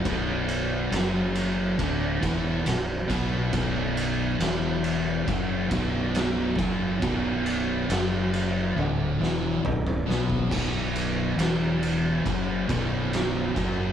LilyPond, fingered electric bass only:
\new Staff \with { instrumentName = "Fingered electric bass" } { \clef bass \time 4/4 \key b \minor \tempo 4 = 69 b,,,4 fis,,4 d,,8 e,,8 b,,,8 b,,8 | b,,,4 e,,4 fis,,8 b,,,4 fis,,8 | b,,,4 fis,,4 d,,8 e,,8 b,,,8 b,,8 | b,,,4 e,,4 fis,,8 b,,,4 fis,,8 | }